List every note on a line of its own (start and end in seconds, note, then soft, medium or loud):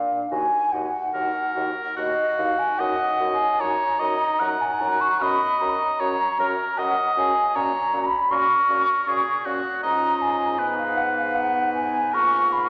0.00 0.21 A#2 soft
0.00 0.30 D4 soft
0.00 0.30 F5 soft
0.31 0.47 D#2 medium
0.31 0.47 D#4 medium
0.31 0.47 F#4 soft
0.31 0.74 G#5 medium
0.72 0.90 D#2 medium
0.72 0.89 D#4 soft
0.72 0.88 F#4 soft
0.72 1.74 F#5 medium
1.13 1.30 D#2 soft
1.13 1.31 D#4 soft
1.13 1.29 F#4 soft
1.13 1.93 A#4 medium
1.54 1.72 D#2 medium
1.54 1.72 D#4 soft
1.54 1.70 F#4 soft
1.96 2.13 D#2 medium
1.96 2.14 D#4 soft
1.96 2.12 F#4 soft
1.96 2.81 F#4 medium
1.96 2.37 D#5 medium
2.38 2.55 D#2 medium
2.38 2.55 D#4 soft
2.38 2.54 F#4 soft
2.38 2.60 F5 medium
2.59 2.80 G#5 medium
2.78 2.96 F#2 medium
2.78 2.95 D#4 medium
2.78 2.96 F#4 soft
2.78 3.62 D#5 medium
2.78 3.33 F#5 medium
3.19 3.36 F#2 medium
3.19 3.35 D#4 soft
3.19 3.36 F#4 soft
3.33 3.61 G#5 medium
3.60 3.76 F#2 soft
3.60 3.76 D#4 soft
3.60 3.76 F#4 soft
3.60 4.01 C#5 medium
3.60 4.63 A#5 medium
3.99 4.17 F#2 medium
3.99 4.15 D#4 soft
3.99 4.16 F#4 soft
3.99 4.41 D#5 medium
4.39 4.57 F#2 medium
4.39 4.56 D#4 soft
4.39 4.55 F#4 soft
4.39 5.24 F#5 medium
4.61 4.82 G#5 medium
4.80 4.97 F#2 medium
4.80 4.97 D#4 soft
4.80 4.96 F#4 soft
4.80 5.02 A#5 medium
5.01 5.21 C#6 medium
5.21 5.38 F#2 medium
5.21 5.38 C#4 soft
5.21 5.37 F#4 soft
5.21 6.02 D#5 medium
5.21 5.62 B5 medium
5.60 5.77 F#2 medium
5.60 5.76 C#4 soft
5.60 5.76 F#4 soft
5.60 6.79 A#5 medium
5.99 6.16 F#2 medium
5.99 6.16 C#4 soft
5.99 6.15 F#4 soft
5.99 6.39 C#5 medium
6.38 6.55 F#2 medium
6.38 6.54 C#4 soft
6.38 6.55 F#4 soft
6.38 6.80 A#4 medium
6.78 6.95 F#2 medium
6.78 6.95 C#4 soft
6.78 6.94 F#4 medium
6.78 7.57 D#5 medium
6.78 7.17 F#5 medium
7.17 7.33 F#2 medium
7.17 7.33 C#4 soft
7.17 7.33 F#4 soft
7.17 7.57 G#5 medium
7.55 7.72 A#2 medium
7.55 7.72 C#4 medium
7.55 7.71 F#4 medium
7.55 8.05 C#5 medium
7.55 8.07 A#5 medium
7.93 8.10 A#2 medium
7.93 8.09 C#4 soft
7.93 8.09 F#4 soft
8.06 8.32 B5 medium
8.31 8.48 A#2 medium
8.31 8.47 C#4 soft
8.31 8.47 F#4 soft
8.31 9.09 A#4 medium
8.31 9.45 C#6 medium
8.69 8.86 A#2 medium
8.69 8.85 C#4 soft
8.69 8.85 F#4 medium
9.06 9.24 A#2 medium
9.06 9.22 C#4 soft
9.06 9.23 F#4 medium
9.06 9.47 G#4 medium
9.45 9.62 A#2 medium
9.45 9.62 C#4 medium
9.45 9.82 F#4 medium
9.45 9.61 F#4 soft
9.83 12.10 G#2 medium
9.83 10.60 C#4 medium
9.83 10.60 F4 soft
9.83 10.60 D#5 medium
9.83 10.23 A#5 medium
10.22 10.77 G#5 medium
10.58 12.14 B3 medium
10.58 11.35 D#4 medium
10.58 12.12 B4 medium
10.78 10.98 F5 medium
10.97 11.16 F#5 medium
11.17 11.36 F5 medium
11.35 12.15 D#4 medium
11.35 11.74 F#5 medium
11.75 12.16 G#5 medium
12.13 12.69 G#2 medium
12.13 12.69 A#3 medium
12.13 12.69 F4 soft
12.13 12.69 A#4 medium
12.13 12.54 C#6 medium
12.53 12.69 B5 medium